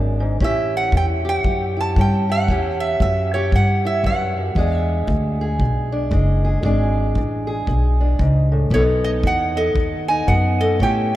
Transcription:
0.00 0.38 G#1 medium
0.00 0.20 F#2 medium
0.00 0.41 G#3 medium
0.00 0.39 D4 medium
0.00 0.39 G#4 medium
0.20 0.40 G#2 medium
0.40 0.91 A1 medium
0.40 0.88 A2 medium
0.40 1.97 C#4 medium
0.40 1.76 E4 medium
0.40 1.24 G4 medium
0.40 0.75 E5 medium
0.40 kick medium
0.77 0.93 F#5 medium
0.92 1.43 E2 medium
0.92 1.41 E3 medium
0.92 kick medium
0.97 1.05 G5 medium
1.25 2.28 G4 medium
1.29 1.75 F#5 medium
1.44 1.95 F#2 medium
1.44 1.92 E3 medium
1.44 kick medium
1.77 2.50 E4 medium
1.77 1.97 A5 medium
1.96 2.47 G2 medium
1.96 2.45 E3 medium
1.96 2.47 C#4 medium
1.96 kick medium
2.01 2.28 G5 medium
2.29 2.47 G4 medium
2.29 2.80 F#5 medium
2.48 2.99 E2 medium
2.48 2.97 A2 medium
2.48 4.55 C#4 medium
2.48 3.85 E4 medium
2.48 3.33 G4 medium
2.48 kick medium
2.80 2.99 E5 medium
3.00 3.51 F#2 medium
3.00 3.50 E3 medium
3.00 3.34 E5 medium
3.00 kick medium
3.34 4.55 G4 medium
3.34 3.54 C#5 medium
3.52 4.03 G2 medium
3.52 4.01 E3 medium
3.52 3.83 F#5 medium
3.52 kick medium
3.85 4.58 E4 medium
3.85 4.06 E5 medium
4.04 4.54 F#2 medium
4.04 4.37 G2 medium
4.04 4.75 F#5 medium
4.04 kick medium
4.38 4.56 F#2 medium
4.55 5.06 E2 medium
4.55 5.04 E2 medium
4.55 6.11 G#3 medium
4.55 5.91 D4 medium
4.55 5.41 G#4 medium
4.55 kick medium
4.75 5.05 E5 medium
5.07 5.58 D2 medium
5.07 5.56 E3 medium
5.07 kick medium
5.41 6.43 G#4 medium
5.59 6.10 B1 medium
5.59 6.09 B2 medium
5.59 kick medium
5.92 6.62 D4 medium
6.11 6.62 F#1 medium
6.11 6.60 E3 medium
6.11 6.62 G#3 medium
6.11 kick medium
6.45 6.62 G#4 medium
6.63 7.14 G#1 medium
6.63 7.12 E2 medium
6.63 8.72 G#3 medium
6.63 7.99 D4 medium
6.63 7.46 G#4 medium
6.63 kick medium
7.15 7.66 A1 medium
7.15 7.65 E3 medium
7.15 kick medium
7.47 8.70 G#4 medium
7.67 8.18 B1 medium
7.67 8.16 B2 medium
7.67 kick medium
8.01 8.70 D4 soft
8.19 8.70 C#2 medium
8.19 8.51 G#2 medium
8.19 kick medium
8.52 8.72 A2 medium
8.70 9.22 B1 medium
8.70 9.20 B2 medium
8.70 10.28 B3 medium
8.70 10.09 D#4 medium
8.70 8.82 C#5 medium
8.70 kick medium
8.74 9.56 A4 medium
9.04 9.10 D#5 medium
9.23 9.74 E2 medium
9.23 9.73 F#3 medium
9.23 9.58 F#5 medium
9.23 kick medium
9.57 10.60 A4 medium
9.57 10.05 D#5 medium
9.74 10.26 D#2 medium
9.74 10.24 F#2 medium
9.74 kick medium
10.08 10.79 D#4 medium
10.08 10.27 G#5 medium
10.27 10.78 F#2 medium
10.27 10.76 F#3 medium
10.27 10.78 B3 medium
10.27 10.61 F#5 medium
10.27 kick medium
10.61 10.79 A4 medium
10.61 10.79 D#5 medium
10.79 11.16 A2 medium
10.79 11.16 C#4 medium
10.79 11.16 E4 medium
10.79 11.16 G4 medium
10.79 11.14 G5 loud
10.79 kick medium

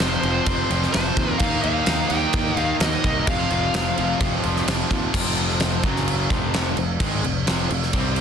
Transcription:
0.00 0.16 F1 medium
0.00 0.23 F2 medium
0.00 1.39 F2 medium
0.00 0.23 C3 medium
0.00 1.40 C3 medium
0.00 1.40 F3 loud
0.00 0.23 F3 medium
0.00 0.91 C5 medium
0.00 snare loud
0.23 0.39 F1 medium
0.23 0.47 F2 loud
0.23 0.47 C3 loud
0.23 0.48 F3 loud
0.23 crash medium
0.46 0.62 F1 medium
0.46 0.69 F2 medium
0.46 0.70 C3 medium
0.46 0.71 F3 medium
0.46 kick loud
0.46 crash medium
0.70 0.86 F1 loud
0.70 0.93 F2 medium
0.70 0.93 C3 medium
0.70 0.94 F3 medium
0.70 crash medium
0.83 snare soft
0.92 1.10 F1 loud
0.92 1.17 F2 loud
0.92 1.16 C3 loud
0.92 1.17 F3 loud
0.92 1.41 C5 medium
0.92 snare loud
0.92 crash medium
1.17 1.32 D#2 loud
1.17 1.39 F2 medium
1.17 1.39 C3 medium
1.17 1.40 F3 medium
1.17 kick medium
1.17 crash medium
1.38 1.56 D#2 loud
1.38 1.62 D#3 loud
1.38 1.63 A#3 loud
1.38 1.64 D#4 loud
1.38 1.61 F5 medium
1.38 kick loud
1.38 crash medium
1.62 1.80 D#2 medium
1.62 1.87 D#3 medium
1.62 1.87 A#3 medium
1.62 1.87 D#4 loud
1.62 2.11 F5 loud
1.62 crash medium
1.86 2.03 D#2 medium
1.86 2.09 D#3 medium
1.86 2.09 A#3 medium
1.86 2.10 D#4 medium
1.86 snare loud
1.86 crash medium
2.08 2.26 D#2 medium
2.08 2.33 D#3 loud
2.08 2.33 A#3 loud
2.08 2.34 D#4 loud
2.08 2.58 G5 loud
2.08 crash medium
2.33 2.49 D#2 loud
2.33 2.56 D#3 medium
2.33 2.57 A#3 medium
2.33 2.57 D#4 loud
2.33 kick loud
2.33 crash medium
2.56 2.72 D#2 loud
2.56 2.79 D#3 medium
2.56 2.80 A#3 medium
2.56 2.81 D#4 loud
2.56 2.75 F5 loud
2.56 crash medium
2.80 2.96 D#2 loud
2.80 3.04 D#3 medium
2.80 3.05 A#3 loud
2.80 3.05 D#4 loud
2.80 3.25 D#5 medium
2.80 snare loud
2.80 crash medium
3.04 3.19 C2 loud
3.04 3.27 D#3 medium
3.04 3.27 A#3 medium
3.04 3.27 D#4 medium
3.04 kick medium
3.04 crash medium
3.27 3.43 F1 medium
3.27 3.50 F2 medium
3.27 3.50 C3 loud
3.27 3.51 F3 loud
3.27 4.64 F5 medium
3.27 kick loud
3.27 crash medium
3.50 3.67 F1 medium
3.50 3.73 F2 medium
3.50 3.74 C3 medium
3.50 3.74 F3 medium
3.50 crash medium
3.74 3.90 F1 medium
3.74 3.96 F2 medium
3.74 3.97 C3 medium
3.74 3.97 F3 loud
3.74 snare loud
3.74 crash medium
3.97 4.14 F1 medium
3.97 4.20 F2 loud
3.97 4.20 C3 loud
3.97 4.21 F3 loud
3.97 crash medium
4.20 4.36 F1 loud
4.20 4.42 F2 medium
4.20 4.43 C3 medium
4.20 4.44 F3 medium
4.20 kick loud
4.20 crash medium
4.43 4.60 F1 medium
4.43 4.65 F2 medium
4.43 4.65 C3 medium
4.43 4.66 F3 medium
4.43 crash medium
4.56 snare soft
4.66 4.83 F1 loud
4.66 4.88 F2 loud
4.66 4.89 C3 medium
4.66 4.90 F3 loud
4.66 snare loud
4.66 crash medium
4.89 5.06 D#2 medium
4.89 5.12 F2 medium
4.89 5.12 C3 medium
4.89 5.13 F3 medium
4.89 kick medium
4.89 crash medium
5.13 5.80 F1 loud
5.13 5.83 F2 loud
5.13 5.83 C3 loud
5.13 5.83 F3 loud
5.13 kick loud
5.13 crash loud
5.38 crash medium
5.49 snare soft
5.60 snare loud
5.60 crash medium
5.83 6.27 F#1 medium
5.83 6.30 F#2 loud
5.83 6.30 C#3 loud
5.83 6.31 F#3 loud
5.83 kick loud
5.83 crash medium
5.96 snare soft
6.08 crash medium
6.30 6.74 F1 loud
6.30 6.76 F2 medium
6.30 6.77 C3 medium
6.30 6.77 F3 loud
6.30 kick loud
6.30 crash medium
6.54 snare loud
6.54 crash medium
6.77 6.99 F1 medium
6.77 6.96 F2 medium
6.77 6.97 C3 medium
6.77 crash medium
7.00 7.22 G#1 loud
7.00 7.23 G#2 loud
7.00 7.23 D#3 loud
7.00 7.23 G#3 loud
7.00 kick loud
7.00 crash loud
7.23 7.46 F1 medium
7.23 7.42 F2 medium
7.23 7.42 C3 medium
7.23 crash medium
7.46 7.69 F1 medium
7.46 7.69 F2 medium
7.46 7.69 C3 loud
7.46 7.70 F3 loud
7.46 snare loud
7.46 crash medium
7.70 7.92 F1 medium
7.70 7.89 F2 medium
7.70 7.89 C3 medium
7.70 crash medium
7.83 snare soft
7.93 8.21 C2 loud
7.93 8.21 C3 medium
7.93 8.21 G3 loud
7.93 8.21 C4 loud
7.93 kick loud
7.93 crash medium
8.16 crash medium

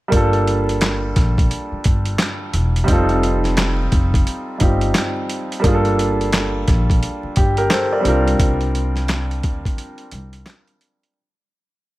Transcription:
0.08 2.82 G3 medium
0.08 2.83 A#3 medium
0.12 1.12 G1 loud
0.12 2.84 D4 medium
0.12 2.85 F4 medium
0.12 kick loud
0.12 closed hi-hat loud
0.16 2.86 A4 medium
0.33 closed hi-hat soft
0.48 closed hi-hat medium
0.69 closed hi-hat soft
0.81 snare loud
0.81 clap medium
0.81 closed hi-hat loud
1.16 1.45 A#1 loud
1.16 kick medium
1.16 snare soft
1.16 closed hi-hat medium
1.38 kick loud
1.38 closed hi-hat medium
1.51 closed hi-hat medium
1.72 muted upright bass stroke soft
1.84 2.14 G1 medium
1.84 kick loud
1.84 closed hi-hat medium
2.05 closed hi-hat medium
2.19 snare loud
2.19 clap medium
2.19 closed hi-hat loud
2.54 2.83 E1 loud
2.54 closed hi-hat medium
2.76 closed hi-hat medium
2.84 4.55 G3 medium
2.84 4.56 C4 medium
2.88 3.87 F1 loud
2.88 4.57 D#4 medium
2.88 4.58 F4 medium
2.88 kick loud
2.88 closed hi-hat loud
2.92 4.59 A4 medium
3.09 closed hi-hat soft
3.23 closed hi-hat medium
3.44 snare soft
3.44 closed hi-hat medium
3.57 snare loud
3.57 clap loud
3.57 closed hi-hat medium
3.92 4.21 F1 loud
3.92 kick medium
3.92 closed hi-hat medium
4.14 kick loud
4.14 closed hi-hat medium
4.27 closed hi-hat medium
4.58 4.90 G1 loud
4.58 5.58 G3 medium
4.58 5.63 C4 medium
4.58 5.64 D#4 medium
4.58 5.64 F4 medium
4.58 kick loud
4.58 closed hi-hat medium
4.62 5.65 G4 medium
4.81 closed hi-hat medium
4.95 snare loud
4.95 clap medium
4.95 closed hi-hat loud
5.29 closed hi-hat medium
5.52 closed hi-hat medium
5.60 7.99 G3 medium
5.60 8.00 A#3 medium
5.64 6.63 G1 loud
5.64 8.01 D4 medium
5.64 8.02 F4 medium
5.64 kick loud
5.64 closed hi-hat loud
5.68 5.74 G#4 medium
5.75 7.38 A4 medium
5.85 closed hi-hat soft
5.99 closed hi-hat medium
6.21 closed hi-hat soft
6.33 snare loud
6.33 clap loud
6.33 closed hi-hat medium
6.68 6.97 A#1 medium
6.68 kick medium
6.68 snare soft
6.68 closed hi-hat medium
6.90 kick loud
6.90 closed hi-hat medium
7.03 closed hi-hat medium
7.23 muted upright bass stroke soft
7.36 7.66 G1 loud
7.36 7.57 G4 medium
7.36 kick loud
7.36 closed hi-hat medium
7.57 7.70 G4 medium
7.57 7.70 A#4 medium
7.57 closed hi-hat medium
7.70 7.91 A4 medium
7.70 7.91 C5 medium
7.70 snare loud
7.70 clap medium
7.70 closed hi-hat loud
7.92 8.07 A#4 medium
7.92 8.25 D5 medium
8.00 10.75 G3 medium
8.00 10.76 C4 medium
8.04 8.35 C2 loud
8.04 10.77 D4 medium
8.04 10.78 F4 medium
8.04 closed hi-hat medium
8.08 10.79 A#4 medium
8.28 closed hi-hat medium
8.40 9.39 C2 loud
8.40 kick loud
8.40 closed hi-hat loud
8.61 closed hi-hat soft
8.75 closed hi-hat medium
8.96 snare soft
8.96 closed hi-hat medium
9.08 snare loud
9.08 clap loud
9.08 closed hi-hat loud
9.31 closed hi-hat soft
9.43 9.73 D2 medium
9.43 kick medium
9.43 closed hi-hat medium
9.65 kick loud
9.65 closed hi-hat medium
9.78 closed hi-hat medium
9.98 closed hi-hat soft
10.11 10.42 C2 loud
10.11 closed hi-hat medium
10.33 closed hi-hat medium
10.46 snare loud
10.46 clap medium
10.46 closed hi-hat loud
10.67 closed hi-hat soft
10.81 closed hi-hat medium
11.03 closed hi-hat medium

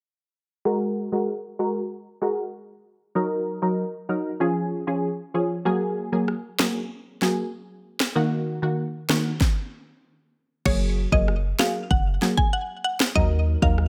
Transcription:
0.65 1.09 G#3 medium
0.65 1.09 F#4 medium
0.65 1.09 A#4 loud
1.12 1.34 G#3 medium
1.12 1.34 F#4 medium
1.12 1.34 A#4 medium
1.59 1.81 G#3 medium
1.59 1.81 F#4 medium
1.59 1.81 A#4 medium
2.21 2.43 G#3 medium
2.21 2.43 F#4 medium
2.21 2.44 A#4 medium
3.15 3.58 F#3 loud
3.15 3.59 D#4 medium
3.15 3.59 A#4 loud
3.62 3.84 F#3 medium
3.62 3.84 D#4 medium
3.62 3.84 A#4 medium
4.09 4.31 F#3 medium
4.09 4.31 D#4 medium
4.09 4.31 A#4 medium
4.40 4.83 F3 medium
4.40 4.84 C#4 medium
4.40 4.84 G#4 loud
4.87 5.09 F3 medium
4.87 5.09 C#4 medium
4.87 5.09 G#4 medium
5.34 5.56 F3 medium
5.34 5.56 C#4 medium
5.34 5.56 G#4 medium
5.65 6.09 F#3 loud
5.65 6.09 A#3 medium
5.65 6.09 G#4 loud
6.12 6.34 F#3 medium
6.12 6.34 A#3 medium
6.12 6.34 G#4 medium
6.28 cross-stick medium
6.59 6.81 F#3 medium
6.59 6.81 A#3 medium
6.59 6.81 G#4 medium
6.59 cross-stick medium
6.59 snare loud
7.22 7.43 F#3 medium
7.22 7.43 A#3 medium
7.22 7.44 G#4 medium
7.22 snare medium
8.00 cross-stick medium
8.00 snare loud
8.15 8.59 D#3 loud
8.15 8.59 A#3 medium
8.15 8.59 F#4 loud
8.62 8.84 D#3 medium
8.62 8.84 A#3 medium
8.62 8.84 F#4 medium
9.09 9.31 D#3 medium
9.09 9.31 A#3 medium
9.09 9.31 F#4 medium
9.09 cross-stick medium
9.09 snare loud
9.41 kick loud
9.41 snare medium
10.65 11.06 F#1 loud
10.65 11.09 F#3 medium
10.65 11.09 A#3 medium
10.65 11.09 G#4 loud
10.65 10.79 C#5 loud
10.65 kick loud
10.65 crash medium
11.12 11.53 F#1 medium
11.12 11.34 F#3 medium
11.12 11.34 A#3 medium
11.12 11.34 G#4 medium
11.12 11.25 D#5 medium
11.12 kick medium
11.28 cross-stick medium
11.59 11.81 F#3 medium
11.59 11.81 A#3 medium
11.59 11.81 G#4 medium
11.59 11.72 F5 medium
11.59 cross-stick medium
11.59 snare loud
11.91 12.18 F#1 loud
11.91 12.03 F#5 medium
11.91 kick medium
12.21 12.43 F#3 medium
12.21 12.43 A#3 medium
12.21 12.44 G#4 medium
12.21 snare medium
12.37 12.50 G#5 medium
12.37 kick medium
12.53 12.66 F#5 medium
12.84 12.97 F#5 medium
13.00 cross-stick medium
13.00 snare loud
13.15 13.56 D#2 loud
13.15 13.59 F#3 loud
13.15 13.59 D#4 medium
13.15 13.59 A#4 loud
13.15 13.28 D#5 loud
13.15 kick loud
13.62 13.88 D#2 loud
13.62 13.84 F#3 medium
13.62 13.84 D#4 medium
13.62 13.84 A#4 medium
13.62 13.75 F5 medium
13.62 kick medium
13.78 cross-stick medium

